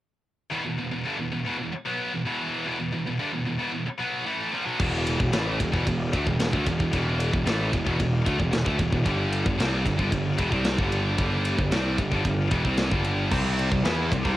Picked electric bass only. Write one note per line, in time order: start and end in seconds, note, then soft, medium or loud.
4.80 5.17 E1 loud
5.20 5.32 E1 medium
5.33 5.58 A1 medium
5.60 5.72 E1 medium
5.74 5.86 E1 medium
5.87 6.11 E1 medium
6.14 6.26 D2 loud
6.27 6.39 E1 medium
6.40 6.52 E1 medium
6.53 6.65 D2 medium
6.67 6.79 E1 medium
6.80 6.92 E1 medium
6.93 7.30 E1 loud
7.34 7.46 E1 medium
7.46 7.71 A1 medium
7.73 7.85 E1 medium
7.87 7.99 E1 medium
8.00 8.24 E1 medium
8.27 8.39 D2 loud
8.40 8.52 E1 medium
8.54 8.66 E1 medium
8.66 8.79 D2 medium
8.80 8.92 E1 medium
8.93 9.05 E1 medium
9.06 9.43 G1 loud
9.46 9.58 G1 medium
9.60 9.84 C2 loud
9.86 9.98 G1 medium
9.99 10.11 G1 loud
10.12 10.37 G1 medium
10.39 10.51 E1 loud
10.52 10.77 C2 loud
10.79 11.16 G1 loud
11.19 11.56 G1 loud
11.59 11.71 G1 medium
11.71 11.97 C2 medium
11.99 12.11 G1 medium
12.12 12.24 G1 medium
12.25 12.50 G1 medium
12.51 12.64 E1 loud
12.65 12.90 C2 medium
12.92 13.29 G1 medium
13.32 13.69 C2 medium
13.72 13.83 C2 medium
13.84 14.09 E2 medium
14.12 14.24 C2 medium
14.25 14.37 C2 loud